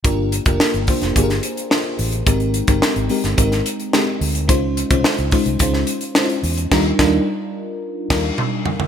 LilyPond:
<<
  \new Staff \with { instrumentName = "FM electric piano" } { \time 4/4 \key g \phrygian \tempo 4 = 108 <bes d' f' g' bes'>8 r16 <bes d' f' g' bes'>8 r16 <bes d' f' g' c''>8 <bes d' f' g' aes' bes'>8. r16 <bes d' f' g' c''>8. r16 | <aes c' ees' g' bes'>8 r16 <aes c' ees' g' bes'>8 r16 <aes c' ees' g' bes'>8 <aes c' ees' g' bes'>8. r16 <aes c' ees' g' bes'>8. r16 | <aes des' ees' f' c''>8 r16 <aes des' ees' f' c''>8 r16 <aes des' ees' f' c''>8 <aes des' ees' f' c''>8. r16 <aes des' ees' fes' f' c''>8. r16 | <g d' ees' f' bes'>8 <g d' ees' f' bes'>8 r4. <g d' ees' f' bes'>8 r4 | }
  \new Staff \with { instrumentName = "Fingered electric bass" } { \clef bass \time 4/4 \key g \phrygian g,,8. f,,16 r16 g,,16 r16 f,,16 g,,8 r4 a,,8 | aes,,8. g,,16 r16 aes,,16 r16 g,,16 aes,,8 r4 d,8 | des,8. c,16 r16 des,16 r16 c,16 des,8 r4 fes,8 | ees,8 ees,8 r4. ees,8 r4 | }
  \new DrumStaff \with { instrumentName = "Drums" } \drummode { \time 4/4 <hh bd>8 hh16 <hh bd>16 sn16 hh16 <hho bd>16 <hh sn>16 <hh bd>16 <hh sn>16 hh16 hh16 sn8 hho16 hh16 | <hh bd>16 hh16 hh16 <hh bd>16 sn16 hh16 hho16 <hh sn>16 <hh bd>16 <hh sn>16 hh16 hh16 sn8 hho16 hh16 | <hh bd>8 hh16 <hh bd>16 sn16 hh16 <hho bd>16 hh16 <hh bd>16 sn16 hh16 hh16 sn16 hh16 hho16 hh16 | <cymc bd sn>8 <bd sn>8 r4 r8 <cymc bd sn>8 toml8 tomfh16 tomfh16 | }
>>